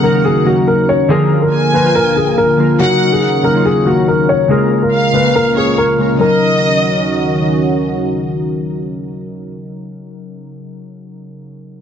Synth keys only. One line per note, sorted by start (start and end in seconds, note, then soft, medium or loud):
0.00 0.02 C#3 medium
0.00 0.11 C#3 medium
0.00 0.03 F#3 medium
0.00 0.12 F#3 medium
0.00 0.04 A#3 medium
0.00 0.12 A#3 medium
0.00 0.04 D#4 medium
0.00 0.05 A#4 loud
0.04 0.13 D#4 medium
0.04 0.13 A#4 medium
0.12 0.39 C#3 medium
0.12 0.40 F#3 medium
0.12 0.40 A#3 medium
0.12 0.41 D#4 medium
0.12 0.41 A#4 medium
0.44 0.98 C#3 medium
0.44 0.98 F#3 medium
0.44 0.98 A#3 medium
0.44 0.99 D#4 medium
0.44 0.99 A#4 medium
1.08 1.62 D3 loud
1.08 1.62 F3 loud
1.08 1.63 A#3 medium
1.08 1.63 F4 medium
1.08 1.63 A#4 loud
1.72 1.82 D3 medium
1.72 1.82 F3 medium
1.72 1.83 A#3 medium
1.72 1.83 F4 medium
1.72 1.83 A#4 medium
1.83 2.45 D3 medium
1.83 2.45 F3 medium
1.83 2.46 A#3 medium
1.83 2.46 F4 medium
1.83 2.47 A#4 medium
2.57 2.76 D3 medium
2.57 2.76 F3 medium
2.57 2.76 A#3 medium
2.57 2.77 F4 medium
2.57 2.77 A#4 medium
2.79 3.32 C#3 loud
2.79 3.32 F#3 medium
2.79 3.33 A#3 medium
2.79 3.33 D#4 medium
2.79 3.34 A#4 loud
3.42 3.52 C#3 medium
3.42 3.52 F#3 medium
3.42 3.53 A#3 medium
3.42 3.53 D#4 medium
3.42 3.54 A#4 medium
3.53 3.80 C#3 medium
3.53 3.81 F#3 medium
3.53 3.81 A#3 medium
3.53 3.81 D#4 medium
3.53 3.82 F4 medium
3.85 4.38 C#3 medium
3.85 4.39 F#3 medium
3.85 4.39 A#3 medium
3.85 4.40 D#4 medium
3.85 4.40 A#4 medium
4.48 5.02 C#3 medium
4.48 5.02 G#3 medium
4.48 5.03 A#3 medium
4.48 5.03 F4 medium
4.48 5.03 A#4 loud
5.13 5.22 C#3 medium
5.13 5.22 G#3 medium
5.13 5.23 A#3 medium
5.13 5.23 F4 medium
5.13 5.24 A#4 medium
5.23 5.85 C#3 medium
5.23 5.86 G#3 medium
5.23 5.86 A#3 medium
5.23 5.86 F4 medium
5.23 5.87 A#4 medium
5.98 6.13 C#3 medium
5.98 6.17 G#3 medium
5.98 6.17 A#3 medium
5.98 6.17 F4 medium
5.98 6.18 A#4 medium
6.14 9.47 C#3 medium
6.18 9.51 F#3 medium
6.23 9.56 D#4 medium
6.27 9.60 A#4 medium